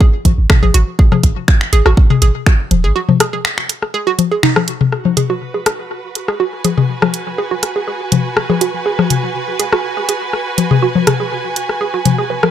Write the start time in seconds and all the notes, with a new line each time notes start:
0.01 G#4, kick
0.25 G#1, kick, closed hi-hat, low conga
0.38 G#1
0.50 finger snap, kick, cross-stick, high tom
0.63 G#1 G#4, low conga
0.74 G#1 F#4, closed hi-hat
0.99 G#4, kick
1.12 G#4, cross-stick, high tom, low conga
1.23 G#1, kick, closed hi-hat
1.48 finger snap, kick
1.61 finger snap
1.73 G#1 G#4, closed hi-hat
1.86 G#1 F#4, cross-stick
1.97 kick
2.10 G#4, high tom
2.22 G#1 G#4, closed hi-hat
2.46 finger snap, kick, cross-stick
2.71 D#1, closed hi-hat, low conga
2.84 G#1 G#4
2.96 F#4
3.09 high tom, low conga
3.20 G#4, cross-stick, closed hi-hat
3.33 G#4
3.45 finger snap
3.58 finger snap
3.69 closed hi-hat
3.82 cross-stick
3.94 G#4
4.07 F#4
4.19 closed hi-hat, low conga
4.32 G#4
4.43 D#4, finger snap, high tom
4.56 cross-stick, low conga
4.68 closed hi-hat
4.81 high tom
4.92 F#4, cross-stick
5.05 low conga
5.17 G#4, closed hi-hat, high tom
5.27 F#4 B4
5.54 G#4
5.66 G#4, cross-stick, closed hi-hat
6.15 closed hi-hat
6.28 G#4, cross-stick
6.40 F#4 G#5
6.65 G#4, closed hi-hat, low conga
6.77 G#4, high tom
7.02 cross-stick, low conga
7.14 closed hi-hat
7.38 G#4
7.51 F#4
7.63 cross-stick, closed hi-hat
7.76 G#4
7.88 G#4
8.12 closed hi-hat, high tom, low conga
8.37 cross-stick
8.50 G#4, low conga
8.61 F#4, closed hi-hat
8.86 G#4
8.99 G#4, cross-stick, low conga
9.10 closed hi-hat, high tom
9.60 G#4, closed hi-hat
9.72 F#4, cross-stick
9.97 G#4
10.09 G#4, closed hi-hat
10.33 cross-stick
10.58 closed hi-hat, low conga
10.71 G#4, high tom
10.82 F#4
10.95 low conga
11.07 G#4, cross-stick, closed hi-hat, high tom
11.20 G#4
11.56 closed hi-hat
11.69 cross-stick
11.81 G#4
11.94 F#4
12.05 closed hi-hat, high tom, low conga
12.18 G#4
12.30 B4
12.43 A#4, cross-stick, low conga